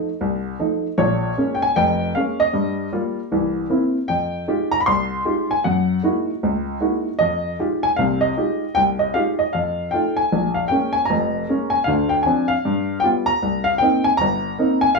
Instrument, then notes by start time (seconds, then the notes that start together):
upright piano
0.21 C2
0.59 F3 A3 D#4
0.98 A#1 A#2 C#5
1.38 G#3 A#3 C#4
1.55 G5
1.62 G#5
1.76 F1 F2 G5
2.15 G#3 A#3 C#4 F5
2.40 D#5
2.53 G2 G3
2.93 G3 A#3 F4
3.32 C2 E3
3.70 A#3 C4 E4
4.08 F2 G5
4.48 G#3 D#4 F4 G4
4.71 A#5
4.80 B5
4.86 C2 C6
5.25 G#3 D#4 F4 G4
5.51 G#5
5.64 F#2 F#5
6.03 G#3 A#3 D#4 E4 F#4
6.43 C#2
6.81 G#3 A#3 D#4 E4 F#4
7.19 F2 D#5
7.59 G#3 D#4 F4 G4
7.83 G#5
7.96 C2 C3 F5
8.21 D#5
8.37 G#3 D#4 F4 G4
8.75 C2 G5
8.99 D#5
9.14 G#3 D#4 F4 G4 F5
9.39 D#5
9.53 F2 F5
9.91 A3 D#4 F4 G5
10.17 G#5
10.32 A#1
10.54 F5
10.68 G#3 A#3 C#4 G5
10.93 G#5
11.05 A#5
11.10 F1 F2
11.49 G#3 A#3 C#4
11.70 G#5
11.84 D2 D3 F5
12.09 G5
12.23 F3 C4 D4 G#5
12.48 F5
12.65 G2
13.00 G3 F4 G5
13.04 B3
13.26 A#5
13.42 C2
13.64 F5
13.78 A#3 C4 G5
13.82 D#4
14.04 G#5
14.17 G1 A#5
14.59 A#3 C4 D#4
14.81 G#5
14.95 F5